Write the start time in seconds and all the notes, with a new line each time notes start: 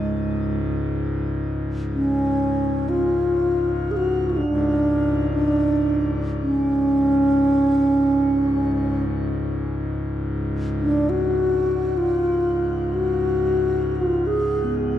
Already playing: C#2 G#2 G#3
1.95 C#4
2.89 F4
3.91 G#4
3.97 F#4
4.30 F4
4.37 D4
4.44 C#2 G#2
5.33 D4
6.42 C#4
10.79 D4
11.09 F#4
11.97 F4
12.94 F#4
13.96 F4
14.27 G#4
14.64 B3